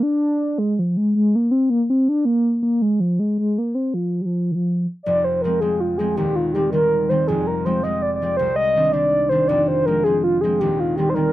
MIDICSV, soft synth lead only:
0, 0, Header, 1, 2, 480
1, 0, Start_track
1, 0, Tempo, 370599
1, 768, Time_signature, 6, 3, 24, 8
1, 14669, End_track
2, 0, Start_track
2, 0, Title_t, "Soft synth lead"
2, 0, Program_c, 0, 80
2, 32, Note_on_c, 0, 62, 114
2, 752, Note_on_c, 0, 56, 100
2, 771, Note_off_c, 0, 62, 0
2, 1020, Note_on_c, 0, 53, 79
2, 1039, Note_off_c, 0, 56, 0
2, 1251, Note_on_c, 0, 56, 86
2, 1271, Note_off_c, 0, 53, 0
2, 1477, Note_off_c, 0, 56, 0
2, 1485, Note_on_c, 0, 56, 99
2, 1752, Note_on_c, 0, 58, 87
2, 1772, Note_off_c, 0, 56, 0
2, 1957, Note_on_c, 0, 60, 79
2, 1977, Note_off_c, 0, 58, 0
2, 2198, Note_on_c, 0, 58, 92
2, 2217, Note_off_c, 0, 60, 0
2, 2451, Note_off_c, 0, 58, 0
2, 2459, Note_on_c, 0, 60, 70
2, 2697, Note_on_c, 0, 62, 86
2, 2716, Note_off_c, 0, 60, 0
2, 2913, Note_on_c, 0, 58, 97
2, 2933, Note_off_c, 0, 62, 0
2, 3393, Note_off_c, 0, 58, 0
2, 3400, Note_on_c, 0, 58, 74
2, 3646, Note_on_c, 0, 56, 81
2, 3666, Note_off_c, 0, 58, 0
2, 3884, Note_on_c, 0, 53, 74
2, 3903, Note_off_c, 0, 56, 0
2, 4132, Note_on_c, 0, 56, 81
2, 4152, Note_off_c, 0, 53, 0
2, 4371, Note_off_c, 0, 56, 0
2, 4376, Note_on_c, 0, 56, 86
2, 4639, Note_on_c, 0, 58, 77
2, 4658, Note_off_c, 0, 56, 0
2, 4852, Note_on_c, 0, 60, 74
2, 4871, Note_off_c, 0, 58, 0
2, 5099, Note_on_c, 0, 53, 73
2, 5119, Note_off_c, 0, 60, 0
2, 5454, Note_on_c, 0, 55, 45
2, 5474, Note_off_c, 0, 53, 0
2, 5504, Note_on_c, 0, 53, 77
2, 5524, Note_off_c, 0, 55, 0
2, 5845, Note_on_c, 0, 51, 55
2, 5864, Note_off_c, 0, 53, 0
2, 5885, Note_on_c, 0, 53, 80
2, 5904, Note_off_c, 0, 51, 0
2, 6301, Note_off_c, 0, 53, 0
2, 6515, Note_on_c, 0, 74, 99
2, 6788, Note_on_c, 0, 72, 81
2, 6807, Note_off_c, 0, 74, 0
2, 7014, Note_on_c, 0, 70, 89
2, 7033, Note_off_c, 0, 72, 0
2, 7256, Note_on_c, 0, 68, 96
2, 7276, Note_off_c, 0, 70, 0
2, 7513, Note_on_c, 0, 65, 82
2, 7533, Note_off_c, 0, 68, 0
2, 7741, Note_on_c, 0, 68, 90
2, 7760, Note_off_c, 0, 65, 0
2, 7973, Note_off_c, 0, 68, 0
2, 7981, Note_on_c, 0, 67, 87
2, 8231, Note_on_c, 0, 65, 79
2, 8251, Note_off_c, 0, 67, 0
2, 8406, Note_off_c, 0, 65, 0
2, 8406, Note_on_c, 0, 65, 58
2, 8454, Note_on_c, 0, 67, 101
2, 8474, Note_off_c, 0, 65, 0
2, 8676, Note_off_c, 0, 67, 0
2, 8683, Note_on_c, 0, 70, 107
2, 9185, Note_on_c, 0, 72, 96
2, 9204, Note_off_c, 0, 70, 0
2, 9421, Note_on_c, 0, 68, 92
2, 9441, Note_off_c, 0, 72, 0
2, 9674, Note_on_c, 0, 70, 92
2, 9693, Note_off_c, 0, 68, 0
2, 9907, Note_on_c, 0, 72, 99
2, 9927, Note_off_c, 0, 70, 0
2, 10142, Note_on_c, 0, 75, 110
2, 10161, Note_off_c, 0, 72, 0
2, 10386, Note_on_c, 0, 74, 108
2, 10405, Note_off_c, 0, 75, 0
2, 10547, Note_off_c, 0, 74, 0
2, 10563, Note_on_c, 0, 74, 86
2, 10676, Note_off_c, 0, 74, 0
2, 10684, Note_on_c, 0, 74, 100
2, 10831, Note_off_c, 0, 74, 0
2, 10839, Note_on_c, 0, 72, 111
2, 11079, Note_off_c, 0, 72, 0
2, 11087, Note_on_c, 0, 75, 104
2, 11556, Note_on_c, 0, 74, 101
2, 11575, Note_off_c, 0, 75, 0
2, 12033, Note_on_c, 0, 72, 95
2, 12052, Note_off_c, 0, 74, 0
2, 12275, Note_on_c, 0, 74, 99
2, 12294, Note_off_c, 0, 72, 0
2, 12528, Note_off_c, 0, 74, 0
2, 12536, Note_on_c, 0, 72, 91
2, 12765, Note_on_c, 0, 70, 107
2, 12785, Note_off_c, 0, 72, 0
2, 12999, Note_on_c, 0, 68, 108
2, 13019, Note_off_c, 0, 70, 0
2, 13251, Note_off_c, 0, 68, 0
2, 13259, Note_on_c, 0, 65, 89
2, 13480, Note_on_c, 0, 68, 76
2, 13500, Note_off_c, 0, 65, 0
2, 13725, Note_on_c, 0, 67, 82
2, 13745, Note_off_c, 0, 68, 0
2, 13984, Note_on_c, 0, 65, 74
2, 14003, Note_off_c, 0, 67, 0
2, 14188, Note_off_c, 0, 65, 0
2, 14196, Note_on_c, 0, 67, 94
2, 14367, Note_on_c, 0, 72, 78
2, 14386, Note_off_c, 0, 67, 0
2, 14433, Note_on_c, 0, 70, 106
2, 14453, Note_off_c, 0, 72, 0
2, 14669, Note_off_c, 0, 70, 0
2, 14669, End_track
0, 0, End_of_file